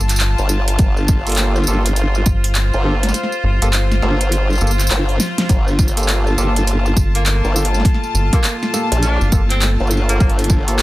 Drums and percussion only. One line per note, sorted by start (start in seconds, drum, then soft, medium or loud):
0.01 tambourine soft
0.09 clap soft
0.09 closed hi-hat medium
0.09 tambourine medium
0.12 tambourine soft
0.14 tambourine soft
0.16 clap loud
0.16 closed hi-hat medium
0.16 tambourine medium
0.16 tambourine soft
0.20 tambourine soft
0.38 tambourine soft
0.49 tambourine medium
0.68 closed hi-hat medium
0.68 tambourine soft
0.79 kick loud
0.79 closed hi-hat medium
0.79 tambourine soft
0.97 tambourine soft
1.08 kick loud
1.08 tambourine medium
1.27 closed hi-hat soft
1.27 tambourine soft
1.29 closed hi-hat soft
1.32 closed hi-hat soft
1.35 clap loud
1.35 closed hi-hat medium
1.37 closed hi-hat medium
1.37 tambourine soft
1.56 tambourine soft
1.64 tambourine soft
1.67 tambourine medium
1.86 closed hi-hat medium
1.86 tambourine soft
1.96 closed hi-hat medium
1.96 tambourine soft
2.15 tambourine soft
2.26 kick loud
2.26 tambourine medium
2.44 closed hi-hat medium
2.44 tambourine soft
2.55 clap loud
2.55 closed hi-hat medium
2.55 tambourine soft
2.74 tambourine soft
3.03 snare soft
3.03 closed hi-hat medium
3.09 snare soft
3.09 tambourine soft
3.14 snare soft
3.14 closed hi-hat medium
3.14 tambourine soft
3.23 snare soft
3.32 tambourine soft
3.62 closed hi-hat medium
3.62 tambourine soft
3.73 clap loud
3.73 closed hi-hat medium
3.73 tambourine soft
3.92 snare soft
3.92 tambourine soft
4.02 snare soft
4.21 closed hi-hat medium
4.21 tambourine soft
4.32 closed hi-hat medium
4.32 tambourine soft
4.50 tambourine soft
4.53 tambourine soft
4.55 tambourine soft
4.58 tambourine soft
4.61 tambourine soft
4.67 tambourine soft
4.71 tambourine soft
4.79 clap soft
4.79 tambourine medium
4.87 clap loud
4.87 closed hi-hat medium
4.87 tambourine medium
5.09 tambourine soft
5.20 snare medium
5.20 tambourine medium
5.38 snare medium
5.38 closed hi-hat medium
5.38 tambourine soft
5.49 kick loud
5.49 closed hi-hat medium
5.49 tambourine soft
5.68 tambourine soft
5.79 kick loud
5.79 tambourine medium
5.88 tambourine medium
5.97 closed hi-hat medium
5.97 tambourine soft
6.03 tambourine soft
6.09 clap loud
6.09 closed hi-hat medium
6.09 tambourine soft
6.27 tambourine soft
6.38 tambourine medium
6.56 closed hi-hat medium
6.56 tambourine soft
6.67 closed hi-hat medium
6.67 tambourine soft
6.86 tambourine soft
6.97 kick loud
6.97 tambourine medium
7.15 closed hi-hat medium
7.15 tambourine soft
7.26 clap loud
7.26 closed hi-hat medium
7.26 tambourine soft
7.45 tambourine soft
7.56 tambourine medium
7.65 closed hi-hat medium
7.74 snare soft
7.74 tambourine soft
7.80 snare soft
7.85 kick loud
7.85 snare soft
7.85 closed hi-hat medium
7.85 tambourine soft
7.94 snare soft
8.03 tambourine soft
8.15 tambourine medium
8.33 kick loud
8.33 closed hi-hat medium
8.33 tambourine soft
8.44 clap loud
8.44 closed hi-hat medium
8.44 tambourine soft
8.63 snare soft
8.63 tambourine soft
8.74 snare soft
8.74 tambourine medium
8.92 closed hi-hat medium
8.92 tambourine soft
9.03 closed hi-hat medium
9.03 tambourine soft
9.21 tambourine soft
9.32 kick loud
9.32 tambourine medium
9.50 clap soft
9.50 closed hi-hat medium
9.50 tambourine soft
9.62 clap loud
9.62 closed hi-hat medium
9.80 tambourine soft
9.87 tambourine soft
9.91 tambourine medium
9.97 tambourine soft
10.09 closed hi-hat medium
10.09 tambourine soft
10.20 kick loud
10.20 closed hi-hat soft
10.20 tambourine soft
10.29 closed hi-hat soft
10.39 closed hi-hat soft
10.39 tambourine soft
10.44 closed hi-hat soft
10.50 kick loud
10.50 tambourine medium
10.68 closed hi-hat medium
10.68 tambourine soft
10.79 clap loud
10.79 closed hi-hat medium
10.79 tambourine soft